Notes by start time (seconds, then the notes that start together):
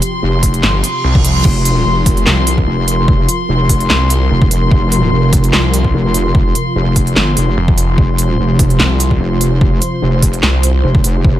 Already playing: C3 F3 F4 G4 C6
0.02 closed hi-hat
0.23 F1
0.43 kick, closed hi-hat
0.54 closed hi-hat
0.63 G1, snare, clap, reverse cymbal
0.84 closed hi-hat
1.04 C2
1.15 kick
1.25 closed hi-hat
1.36 C2
1.45 F1 A#4, kick, crash
1.65 closed hi-hat
1.86 F1
2.06 kick, closed hi-hat
2.17 closed hi-hat
2.27 C2, snare, clap
2.47 closed hi-hat
2.58 kick
2.67 F1
2.88 closed hi-hat
3.08 kick
3.29 closed hi-hat
3.49 F1
3.69 kick, closed hi-hat
3.80 closed hi-hat
3.90 C2, snare, clap
4.10 closed hi-hat
4.31 F1
4.42 kick
4.51 F1, closed hi-hat
4.71 F1, kick
4.92 closed hi-hat
5.12 F1
5.33 kick, closed hi-hat
5.44 closed hi-hat
5.53 C2, snare, clap
5.74 closed hi-hat
5.85 kick
5.94 F1
6.14 closed hi-hat
6.35 kick
6.55 closed hi-hat
6.76 F1
6.96 kick, closed hi-hat
7.07 closed hi-hat
7.16 G1, snare, clap
7.37 F1, closed hi-hat
7.57 F1
7.68 kick
7.78 closed hi-hat
7.98 F1 C5, kick
8.18 closed hi-hat
8.39 F1
8.59 kick, closed hi-hat
8.70 closed hi-hat
8.80 C2, snare, clap
9.00 closed hi-hat
9.11 kick
9.20 F1
9.41 closed hi-hat
9.61 kick
9.82 closed hi-hat
10.02 F1
10.22 kick, closed hi-hat
10.33 closed hi-hat
10.43 C2, snare, clap
10.63 closed hi-hat
10.84 F1
10.95 kick
11.04 F1, closed hi-hat
11.25 F1, kick